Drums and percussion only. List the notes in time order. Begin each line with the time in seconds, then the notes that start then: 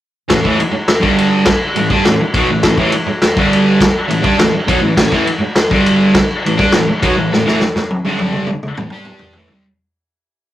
0.30 kick, snare, ride
0.45 kick
0.60 ride
0.88 snare, ride
1.03 kick
1.18 ride
1.45 kick, snare, ride
1.76 ride
1.90 kick
2.05 snare, ride
2.34 kick, ride
2.63 kick, snare, ride
2.78 kick
2.92 ride
3.22 snare, ride
3.37 kick
3.53 ride
3.81 kick, snare, ride
4.11 ride
4.24 kick
4.39 snare, ride
4.68 kick, ride
4.97 kick, snare, crash
5.12 kick
5.27 ride
5.56 snare, ride
5.71 kick
5.86 ride
6.15 kick, snare, ride
6.46 ride
6.59 kick
6.72 snare, ride
7.03 kick, ride
7.33 snare
7.48 snare
7.60 snare
7.76 snare
7.91 high tom
8.05 high tom
8.19 high tom
8.33 mid tom
8.47 mid tom
8.63 mid tom
8.77 mid tom
8.90 mid tom
9.05 mid tom
9.19 floor tom
9.33 floor tom
9.48 floor tom